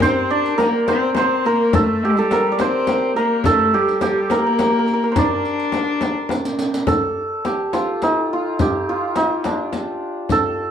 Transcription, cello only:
0.02 C4
0.31 D4
0.60 A#3
0.88 C4
1.15 C4
1.45 A#3
1.73 A3
2.03 G3
2.60 C4
3.17 A#3
3.46 A3
3.74 G3
4.03 G3
4.31 A#3
5.17 D4

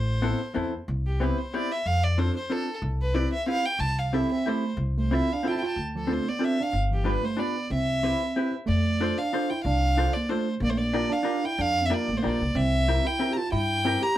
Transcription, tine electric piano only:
4.14 C4
4.32 C4
4.48 A3
4.97 A3
5.15 C4
5.33 D4
5.47 E4 F4
5.55 E4
5.63 F4
5.96 F3
6.10 A3
6.29 B3
6.43 C4
6.60 D4
6.91 E3
7.08 G3
7.23 A3
7.40 B3
7.71 C4
8.66 A3
9.18 D4
9.51 E4
9.66 D4
10.17 A#3
10.32 A3
10.62 A#3
10.69 A3
10.77 A#3
11.10 D4
11.44 E4
11.59 D4
11.81 C4
11.91 A#3
12.13 A3 A#3
12.19 A#3
12.55 C4
13.05 E4
13.31 G4
13.36 F4
13.52 E4
14.02 G4

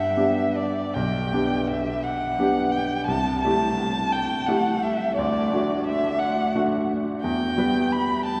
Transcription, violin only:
Already playing: E5
0.56 D5
0.94 G5
1.67 E5
2.03 F#5
2.72 G5
3.06 A5
3.41 A5
4.12 G5
4.46 F#5
4.82 E5
5.17 D5
5.86 E5
6.19 F#5
7.23 G5
7.92 B5
8.26 A5

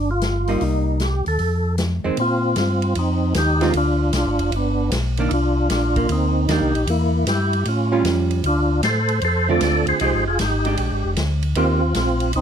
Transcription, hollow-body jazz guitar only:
0.48 G3 A#3 D#4
2.04 D#3 G#3 C4
3.61 D3 G#3 C4 F4
5.19 D#3 A#3 D4
5.97 A#3
6.49 D#3 A#3 D4
7.92 G3 C#4 F4
9.49 D3 A3 C4 F4
10.01 F3 G#3 D#4 G4
10.66 G#3 D4 G4
11.56 D#3 A#3 C4 G4

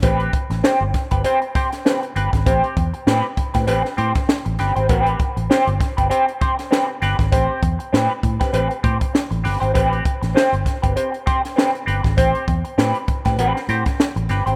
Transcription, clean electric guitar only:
0.03 C4 G4 B4
0.50 muted clean electric guitar stroke
0.63 C4 G4 C5
0.95 muted clean electric guitar stroke
1.11 C4 G4 B4
1.24 C4 G4 C5
1.42 muted clean electric guitar stroke
1.55 C4 G4 C5
1.72 muted clean electric guitar stroke
1.85 C4 G4 B4
2.02 muted clean electric guitar stroke
2.16 C4 G4 B4
2.33 muted clean electric guitar stroke
2.46 C4 G4 C5
2.94 muted clean electric guitar stroke
3.07 C4 G4 B4
3.37 muted clean electric guitar stroke
3.54 C4 G4 B4
3.67 C4 G4 B4
3.84 muted clean electric guitar stroke
3.97 C4 G4 C5
4.15 muted clean electric guitar stroke
4.28 muted clean electric guitar stroke
4.45 muted clean electric guitar stroke
4.59 C4 G4 B4
4.76 C4 G4 C5
4.89 B3 F#4 A#4
5.01 C4 G4 B4
5.36 muted clean electric guitar stroke
5.50 C4 G4 C5
5.80 muted clean electric guitar stroke
5.97 C4 G4 B4
6.10 C4 G4 C5
6.28 muted clean electric guitar stroke
6.41 C4 G4 C5
6.58 muted clean electric guitar stroke
6.71 C4 G4 B4
6.88 muted clean electric guitar stroke
7.02 C4 G4 B4
7.32 C4 G4 C5
7.79 muted clean electric guitar stroke
7.93 C4 G4 B4
8.23 muted clean electric guitar stroke
8.40 C4 G4 B4
8.53 C4 G4 B4
8.70 muted clean electric guitar stroke
8.83 C4 G4 C5
9.00 muted clean electric guitar stroke
9.14 muted clean electric guitar stroke
9.31 muted clean electric guitar stroke
9.44 C4 G4 B4
9.60 C4 G4 C5
9.74 C4 G4 B4
10.22 muted clean electric guitar stroke
10.35 C4 G4 C5
10.65 muted clean electric guitar stroke
10.82 C4 G4 B4
10.96 C4 G4 C5
11.12 muted clean electric guitar stroke
11.26 C4 G4 C5
11.43 muted clean electric guitar stroke
11.56 C4 G4 B4
11.73 muted clean electric guitar stroke
11.86 C4 G4 B4
12.03 muted clean electric guitar stroke
12.17 C4 G4 C5
12.64 muted clean electric guitar stroke
12.78 C4 G4 B4
13.08 muted clean electric guitar stroke
13.25 C4 G4 B4
13.39 C4 G4 B4
13.55 muted clean electric guitar stroke
13.69 C4 G4 C5
13.86 muted clean electric guitar stroke
14.00 muted clean electric guitar stroke
14.16 muted clean electric guitar stroke
14.29 C4 G4 B4
14.46 C4 G4 C5

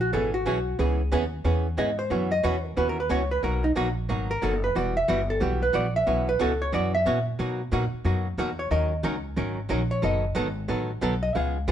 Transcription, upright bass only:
Already playing: A#1
0.13 G#1
0.46 B1
0.79 C#2
1.12 D#2
1.44 E2
1.78 G#2
2.11 F#2
2.44 E2
2.77 D#2
3.10 C#2
3.43 B1
3.76 A#1
4.09 G#1
4.42 F#1
4.75 E1
5.08 G1
5.41 B1
5.74 A#1
6.07 B1
6.40 C#2
6.73 F#2
7.06 A#2
7.39 B2
7.72 A#2
7.93 muted upright bass stroke
8.04 F#2
8.38 E2
8.71 D#2
9.04 C#2
9.37 G#1
9.70 A#1
10.03 F#1
10.36 G#1
10.69 A1
11.02 B1
11.35 C#2
11.68 D#2

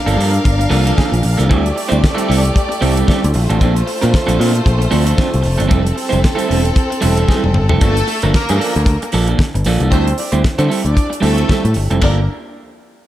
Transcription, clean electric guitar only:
0.06 F3 A#3 D4 A4
0.18 F3 A#3 D4 A4
0.32 muted clean electric guitar stroke
0.44 muted clean electric guitar stroke
0.59 muted clean electric guitar stroke
0.70 F3 A#3 D4 A4
0.85 F3 A#3 D4 A4
0.97 F3 A#3 D4 A4
1.12 muted clean electric guitar stroke
1.23 muted clean electric guitar stroke
1.38 F3 A#3 D4 A4
1.49 G3 C4 E4 A4
1.63 muted clean electric guitar stroke
1.75 muted clean electric guitar stroke
1.88 G3 C4 E4 C5
2.01 muted clean electric guitar stroke
2.15 G3 C4 E4 A4
2.28 G3 C4 E4 A4
2.43 muted clean electric guitar stroke
2.54 muted clean electric guitar stroke
2.69 muted clean electric guitar stroke
2.81 G3 C4 E4 A4
2.96 G3 C4 E4 A4
3.07 G3 C4 E4 A4
3.23 muted clean electric guitar stroke
3.34 muted clean electric guitar stroke
3.49 F3 C4 D4 A4
3.61 F3 C4 D4 A4
3.75 muted clean electric guitar stroke
3.87 muted clean electric guitar stroke
4.01 F3 C4 D4 A#4
4.12 muted clean electric guitar stroke
4.27 F3 C4 D4 A4
4.39 F3 C4 D4 A4
4.53 muted clean electric guitar stroke
4.66 muted clean electric guitar stroke
4.79 muted clean electric guitar stroke
4.91 F3 C4 D4 A4
5.05 F3 C4 D4 A4
5.17 F3 C4 D4 A4
5.31 muted clean electric guitar stroke
5.42 muted clean electric guitar stroke
5.58 F3 C4 D4 A4
5.68 G3 C4 E4 A4
5.83 muted clean electric guitar stroke
5.95 muted clean electric guitar stroke
6.09 G3 C4 E4 C5
6.22 muted clean electric guitar stroke
6.35 G3 C4 E4 A4
6.48 G3 C4 E4 A4
6.63 muted clean electric guitar stroke
6.76 muted clean electric guitar stroke
6.90 muted clean electric guitar stroke
7.01 G3 C4 E4 A4
7.17 G3 C4 E4 A4
7.28 G3 C4 E4 A4
7.44 muted clean electric guitar stroke
7.55 muted clean electric guitar stroke
7.69 G3 C4 E4 A4
7.80 F3 A#3 D4 A4
7.96 muted clean electric guitar stroke
8.08 muted clean electric guitar stroke
8.23 F3 A#3 D4 A#4
8.35 muted clean electric guitar stroke
8.49 F3 A#3 D4 A4
8.60 F3 A#3 D4 A4
8.75 muted clean electric guitar stroke
8.87 muted clean electric guitar stroke
9.03 muted clean electric guitar stroke
9.13 F3 A#3 D4 A4
9.29 F3 A#3 D4 A4
9.39 muted clean electric guitar stroke
9.54 muted clean electric guitar stroke
9.66 F3 A#3 D4 A4
9.82 F3 A#3 D4 A4
9.93 G3 C4 E4 A4
10.08 muted clean electric guitar stroke
10.20 muted clean electric guitar stroke
10.32 G3 C4 E4 C5
10.44 muted clean electric guitar stroke
10.59 G3 C4 E4 A4
10.69 G3 C4 E4 A4
10.83 muted clean electric guitar stroke
10.95 muted clean electric guitar stroke
11.10 muted clean electric guitar stroke
11.21 G3 C4 E4 A4
11.37 G3 C4 E4 A4
11.49 G3 C4 E4 A4
11.64 muted clean electric guitar stroke
11.77 muted clean electric guitar stroke
11.90 G3 C4 E4 A4
12.01 F3 A#3 D4 A4

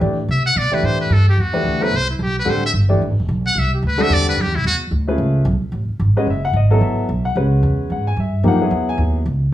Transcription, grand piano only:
0.00 E3 A3 D4 G4 D5
0.71 E3 A3 D4 G4 D5
1.53 E3 A3 D4 G4 B4
1.81 F#3 B3 E4 A4 C5
2.45 D3 G3 C4 F#4 A4
2.89 E3 A3 D4 G4 D5
3.98 D3 G3 C4 F#4 A4
5.07 A3 C#4 F4 G#4 B4
6.17 G#3 C#4 F#4 B4 D#5
6.30 E5
6.45 F#5
6.56 D#5
6.71 F#3 B3 E4 A4
6.83 E5
7.25 F#5
7.36 G#3 C#4 F#4 B4
7.92 F#5
8.07 G#5
8.20 E5
8.44 F3 A#3 D#4 G4
8.48 F#5
8.61 F#3 B3 E4 G#4
8.89 G#5

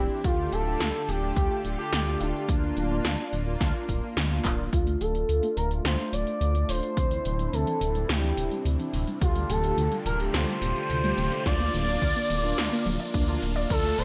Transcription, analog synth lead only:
Already playing: G4
0.24 F4
0.52 A4
1.08 G4
1.79 G4
2.21 D4
4.73 F4
5.01 A4
5.57 A#4
5.85 C5
6.13 D5
6.69 C5
7.54 A4
8.10 G4
9.22 F4
9.50 A4
10.06 A#4
10.34 C5
11.46 D5
13.70 A4
13.98 C5

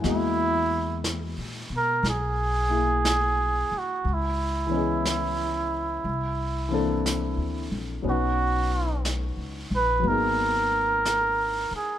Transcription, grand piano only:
Already playing: G#5
0.00 E3 G#3 A#3 D#5
0.05 F#4
2.69 A#3 E4 G#4
4.67 E3 B3
4.71 C#4 D#5
4.77 G#4
6.69 E3 A#3 C4
6.73 D4 A4
8.02 F#3 B3 C#4
8.07 D#4 B4
10.00 F#3 A#3
10.05 B3 D#4
10.10 G#4

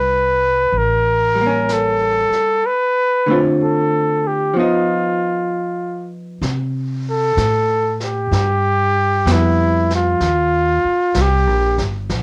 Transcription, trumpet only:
Already playing: B4
0.78 A#4
1.73 A4
2.66 B4
3.63 A4
4.27 G4
4.57 F4
7.11 A4
8.05 G4
9.32 E4
9.96 F4
11.21 G4

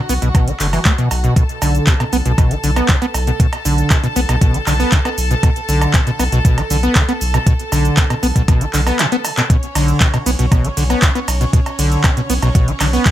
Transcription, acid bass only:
0.09 B3
0.22 B2
0.35 B2
0.47 E3
0.60 D3
0.73 E3
0.86 A3
0.98 B2
1.24 B2
1.36 B2
1.62 D3
1.87 B2
2.00 B2
2.13 B3
2.26 B2
2.38 B2
2.51 E3
2.64 D3
2.76 B3
2.89 B2
3.02 B3
3.27 B2
3.40 B2
3.65 D3
3.91 B2
4.03 B2
4.16 B3
4.29 B2
4.41 B2
4.54 E3
4.67 D3
4.80 B3
4.92 B2
5.05 B3
5.31 B2
5.43 B2
5.69 D3
5.94 B2
6.07 B2
6.19 B3
6.32 B2
6.45 B2
6.58 E3
6.70 D3
6.83 B3
6.96 B2
7.09 B3
7.34 B2
7.47 B2
7.72 D3
7.97 B2
8.10 B2
8.23 B3
8.36 B2
8.48 B2
8.61 E3
8.74 D3
8.87 B3
8.99 B2
9.12 B3
9.37 B2
9.50 B2
9.75 D3
10.01 B2
10.14 B2
10.26 B3
10.39 B2
10.52 B2
10.64 E3
10.77 D3
10.90 B3
11.03 B2
11.15 B3
11.41 B2
11.53 B2
11.79 D3
12.04 B2
12.17 B2
12.30 B3
12.42 B2
12.55 B2
12.68 E3
12.80 D3
12.93 B3
13.06 B2

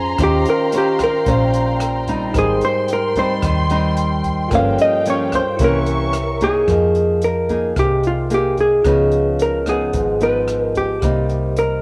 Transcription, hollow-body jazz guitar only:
0.23 G4
0.50 A#4
0.78 G4
1.04 A#4
2.39 G#4
2.65 C5
2.93 A#4
3.19 C5
4.55 F5
4.82 D#5
5.10 C#5
5.35 C5
5.64 A#4
6.44 G#4
7.25 A#4
7.79 G4
8.07 F4
8.34 G4
8.61 G#4
9.42 A#4
9.69 G#4
10.23 B4
10.63 A#4
10.77 G4
11.59 A#4

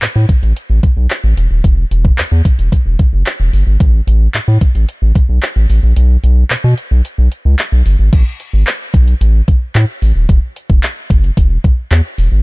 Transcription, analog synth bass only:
0.02 A2
0.16 A2
0.43 A1
0.70 A1
0.97 B1
1.24 A1
1.37 E1
1.51 D#1
1.64 E1
1.91 E1
2.18 E2
2.32 E2
2.59 E1
2.86 E1
3.13 F#1
3.40 E1
3.53 G1
3.67 G#1
3.80 A1
4.07 A1
4.34 A2
4.48 A2
4.75 A1
5.02 A1
5.29 B1
5.56 A1
5.70 A1
5.83 A#1
5.97 B1
6.24 B1
6.51 B2
6.64 B2
6.91 B1
7.18 B1
7.45 C#2
7.72 B1
7.86 G1
7.99 G#1
8.13 A1
8.53 G#1
8.94 B1
9.21 A1
9.75 A2
10.02 A1
10.16 D#1
10.29 E1
10.70 E1
11.10 F#1
11.37 E1
11.91 E2
12.18 E1
12.32 G#1

